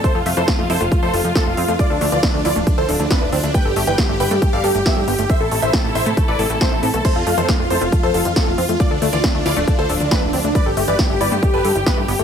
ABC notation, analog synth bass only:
X:1
M:4/4
L:1/16
Q:1/4=137
K:Flyd
V:1 name="Analog synth bass" clef=bass
z F,, F,, F,, z F,, F,, F,,, z F,, F,,, F,, z F,,, F,, F,, | z D,, D,, D,, z D,, D,, D,,, z D,, D,,, D,, z D,,, D,, D,, | z G,,, G,,, G,,, z G,,, G,,, G,, z G,,, G,, G,,, z G,, G,,, G,,, | z A,,, A,,, A,,, z A,,, A,,, A,, z A,,, A,,, A,,, z A,,, A,, B,,, |
z F,, F,, F,, z F,, F,, F,,, z F,, F,,, F,, z F,,, F,, F,, | z D,, D,, D,, z D,, D,, D,,, z D,, D,,, D,, z D,,, D,, D,, | z G,,, G,,, G,,, z G,,, G,,, G,, z G,,, G,, G,,, z G,, G,,, G,,, |]